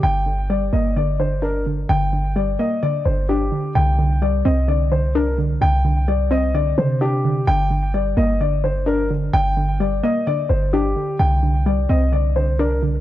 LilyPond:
<<
  \new Staff \with { instrumentName = "Grand piano" } { \time 4/4 \key c \minor \tempo 4 = 129 g''4 d''8 ees''8 d''8 c''8 bes'8 r8 | g''4 d''8 ees''8 d''8 c''8 g'4 | g''4 d''8 ees''8 d''8 c''8 bes'8 r8 | g''4 d''8 ees''8 d''8 c''8 g'4 |
g''4 d''8 ees''8 d''8 c''8 bes'8 r8 | g''4 d''8 ees''8 d''8 c''8 g'4 | g''4 d''8 ees''8 d''8 c''8 bes'8 r8 | }
  \new Staff \with { instrumentName = "Synth pluck" } { \clef bass \time 4/4 \key c \minor d8 d8 g8 bes8 d8 d8 d'8 d8 | d8 d8 g8 bes8 d8 d8 d'8 d8 | d8 d8 g8 c'8 d8 d8 d'8 d8 | d8 d8 g8 c'8 d8 d8 d'8 d8 |
d8 d8 g8 bes8 d8 d8 d'8 d8 | d8 d8 g8 bes8 d8 d8 d'8 d8 | d8 d8 g8 c'8 d8 d8 d'8 d8 | }
  \new Staff \with { instrumentName = "808-style bass" } { \clef bass \time 4/4 \key c \minor g,,4. g,,2~ g,,8 | g,,4. r4 g,,4 r8 | c,4. c,2~ c,8 | c,2~ c,8 c4. |
g,,4. g,,2~ g,,8 | g,,4. r4 g,,4 r8 | c,4. c,2~ c,8 | }
>>